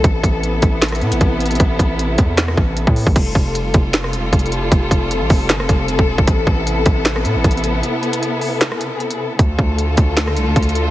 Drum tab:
CC |------------------------------------------------------------------------------------------------|------------------------------------------------------------------------------------------------|x-----------------------------------------------------------------------------------------------|------------------------------------------------------------------------------------------------|
HH |x-----------x-----------x-----------x-----------x---x---x---x-----x-----x-----------x--x--x--x--|x-----------x-----------x-----------x-----------x-----------------------x-----------o-----------|x-----------------------x-----------x-----------x-----------x-----------x---x---x---x-----------|x-----------x-----------x-----------o-----------x-----------x-----------x-----------------------|
CP |------------------------------------------------x-----------------------------------------------|------------------------------------------------x-----------------------------------------------|------------------------------------------------x-----------------------------------------------|------------------------------------------------x-----------------------------------------------|
SD |------------------------------------------------o-----r-----------------------------------------|------------------------------------------------o-----r-----------------------------------------|------------------------------------------------o-----r-----------------------------------------|------------------------------------------------o-----r-----------------------------------------|
BD |o-----------o-----------------------o-----------------------------------o-----------------------|o-----------o-----------------------o-----------------------o-----------------o-----------o-----|o-----------o-----------------------o-----------------------------------o-----------------------|o-----------o-----------------------o-----------------------o-----------------o-----------o-----|

CC |------------------------------------------------------------------------------------------------|------------------------------------------------------------------------------------------------|------------------------------------------------------------------------------------------------|
HH |x-----------------------x-----------x-----------x-----------x-----------x---x---x---x-----------|x-----------x-----x-----x-----------o-----------x-----------x-----------x-----x-----------------|x-----------------------x-----------x-----------x-----------x-----------x---x---x---x-----------|
CP |------------------------------------------------x-----------------------------------------------|------------------------------------------------x-----------------------------------------------|------------------------------------------------x-----------------------------------------------|
SD |------------------------------------------------o-----r-----------------------------------------|------------------------------------------------o-----r-----------------------------------------|------------------------------------------------o-----r-----------------------------------------|
BD |o-----------o-----------------------o-----------------------------------o-----------------------|------------------------------------------------------------------------------------------------|o-----------o-----------------------o-----------------------------------o-----------------------|